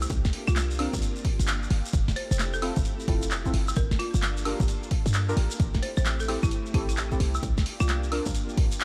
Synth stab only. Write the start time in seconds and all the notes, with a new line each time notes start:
0.79 C4 D4 F4 A#4
2.62 C4 E4 F4 A4
3.08 C4 E4 F4 A4
3.46 C4 E4 F4 A4
4.45 D4 F4 G4 A#4
5.29 D4 F4 G4 A#4
6.28 C4 E4 G4 A4
6.74 C4 E4 G4 A4
7.12 C4 E4 G4 A4
8.12 C4 D4 F4 A#4